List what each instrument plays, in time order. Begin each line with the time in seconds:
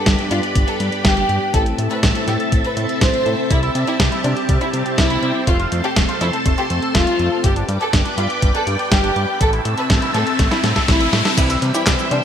Already playing: tine electric piano G2 G3 B3 D4 G4, string machine G4 B4 D5 B5
0.06 analog synth bass G1, kick, snare, closed hi-hat
0.19 closed hi-hat
0.31 analog synth bass G2, violin section F4, closed hi-hat
0.43 closed hi-hat
0.55 analog synth bass G1, kick, closed hi-hat
0.68 violin section A4, closed hi-hat
0.80 analog synth bass G2, closed hi-hat
0.92 closed hi-hat
1.05 analog synth bass G1, violin section G4, kick, snare, closed hi-hat
1.17 closed hi-hat
1.29 analog synth bass G2, closed hi-hat
1.54 analog synth bass A1, tine electric piano A2 A3 C4 E4 A4, string machine C4 A4 E5 A5, violin section A4, kick, closed hi-hat
1.66 closed hi-hat
1.78 analog synth bass A2, closed hi-hat
1.91 tine electric piano A2 A3 C4 E4 A4, violin section B4, closed hi-hat
2.03 analog synth bass A1, kick, snare, closed hi-hat
2.15 closed hi-hat
2.28 analog synth bass A2, violin section G4, snare, closed hi-hat
2.40 closed hi-hat
2.52 analog synth bass A1, kick, closed hi-hat
2.64 violin section B4, closed hi-hat
2.77 analog synth bass A2, closed hi-hat
2.89 closed hi-hat
3.01 analog synth bass A1, violin section C5, kick, snare, closed hi-hat
3.14 closed hi-hat
3.26 analog synth bass A2, tine electric piano A3 C4 E4 A4, closed hi-hat
3.50 analog synth bass C2, clean electric guitar G3, violin section E4, string machine G4, kick, closed hi-hat
3.63 clean electric guitar E4, closed hi-hat
3.75 analog synth bass C3, clean electric guitar G3, closed hi-hat
3.87 violin section E4, clean electric guitar G4, closed hi-hat
4.00 analog synth bass C2, clean electric guitar G3, kick, snare, closed hi-hat
4.12 clean electric guitar E4, closed hi-hat
4.24 analog synth bass C3, clean electric guitar G3, violin section D4, closed hi-hat
4.37 clean electric guitar G4, closed hi-hat
4.49 analog synth bass C2, clean electric guitar G3, kick, closed hi-hat
4.61 violin section E4, clean electric guitar E4, closed hi-hat
4.73 analog synth bass C3, clean electric guitar G3, closed hi-hat
4.86 clean electric guitar G4, closed hi-hat
4.98 analog synth bass C2, clean electric guitar G3, violin section E4, kick, snare, closed hi-hat
5.10 clean electric guitar E4, closed hi-hat
5.23 analog synth bass C3, clean electric guitar G3, closed hi-hat
5.35 clean electric guitar G4
5.47 analog synth bass F1, clean electric guitar A3, violin section F4, string machine A4 A5 C6, kick, closed hi-hat
5.60 clean electric guitar F4, closed hi-hat
5.72 analog synth bass F2, clean electric guitar A3, closed hi-hat
5.84 violin section G4, clean electric guitar A4, closed hi-hat
5.96 analog synth bass F1, clean electric guitar A3, kick, snare, closed hi-hat
6.09 clean electric guitar F4, closed hi-hat
6.21 analog synth bass F2, clean electric guitar A3, violin section E4, snare, closed hi-hat
6.33 clean electric guitar A4, closed hi-hat
6.46 analog synth bass F1, clean electric guitar A3, kick, closed hi-hat
6.58 clean electric guitar F4, violin section G4, closed hi-hat
6.70 analog synth bass F2, clean electric guitar A3, closed hi-hat
6.82 clean electric guitar A4, closed hi-hat
6.95 analog synth bass F1, clean electric guitar A3, violin section F4, kick, snare, closed hi-hat
7.07 clean electric guitar F4, closed hi-hat
7.19 analog synth bass F2, clean electric guitar A3, closed hi-hat
7.32 clean electric guitar A4
7.44 analog synth bass G1, clean electric guitar G3, violin section G4, string machine B4 D5 G5 D6, kick, closed hi-hat, riser
7.56 clean electric guitar D4, closed hi-hat
7.68 analog synth bass G2, clean electric guitar G3, closed hi-hat
7.81 clean electric guitar G4, violin section A4, closed hi-hat
7.93 analog synth bass G1, clean electric guitar G3, kick, snare, closed hi-hat
8.05 clean electric guitar D4, closed hi-hat
8.18 analog synth bass G2, clean electric guitar G3, violin section F4, closed hi-hat
8.30 clean electric guitar G4, closed hi-hat
8.42 analog synth bass G1, clean electric guitar G3, kick, closed hi-hat
8.55 clean electric guitar D4, violin section A4, closed hi-hat
8.67 analog synth bass G2, clean electric guitar G3, closed hi-hat
8.79 clean electric guitar G4, closed hi-hat
8.91 analog synth bass G1, clean electric guitar G3, violin section G4, kick, snare, closed hi-hat
9.04 clean electric guitar D4, closed hi-hat
9.16 analog synth bass G2, clean electric guitar G3, closed hi-hat
9.28 clean electric guitar G4
9.41 analog synth bass A1, clean electric guitar A3, string machine C4 E5 A5 E6, violin section A4, kick, closed hi-hat
9.53 clean electric guitar E4, closed hi-hat
9.65 analog synth bass A2, clean electric guitar A3, closed hi-hat
9.78 clean electric guitar A4, violin section B4, closed hi-hat
9.90 analog synth bass A1, clean electric guitar A3, kick, snare, closed hi-hat
10.02 clean electric guitar E4, closed hi-hat
10.14 analog synth bass A2, clean electric guitar A3, violin section A4, snare, closed hi-hat
10.27 clean electric guitar A4, closed hi-hat
10.39 analog synth bass A1, clean electric guitar A3, kick, snare, closed hi-hat
10.51 clean electric guitar E4, violin section E4, snare, closed hi-hat
10.64 analog synth bass A2, clean electric guitar A3, snare, closed hi-hat
10.76 clean electric guitar A4, kick, snare, closed hi-hat
10.88 analog synth bass A1, clean electric guitar A3, violin section E4, kick, snare, closed hi-hat
11.01 clean electric guitar E4, closed hi-hat
11.13 analog synth bass A2, clean electric guitar A3, snare, closed hi-hat
11.25 clean electric guitar A4, snare, closed hi-hat
11.37 analog synth bass C2, tine electric piano E3 G3 C4 E4, clean electric guitar G3, violin section E4, string machine C5 E5 G5 E6, kick, closed hi-hat, crash, cabasa
11.50 clean electric guitar E4, closed hi-hat, cabasa
11.62 analog synth bass C3, clean electric guitar G3, closed hi-hat
11.74 tine electric piano E3 G3 C4 E4, violin section E4, clean electric guitar G4, closed hi-hat, cabasa
11.87 analog synth bass C2, clean electric guitar G3, kick, snare, clap, closed hi-hat, cabasa
11.99 clean electric guitar E4, closed hi-hat, cabasa
12.11 analog synth bass C3, clean electric guitar G3, violin section D4, closed hi-hat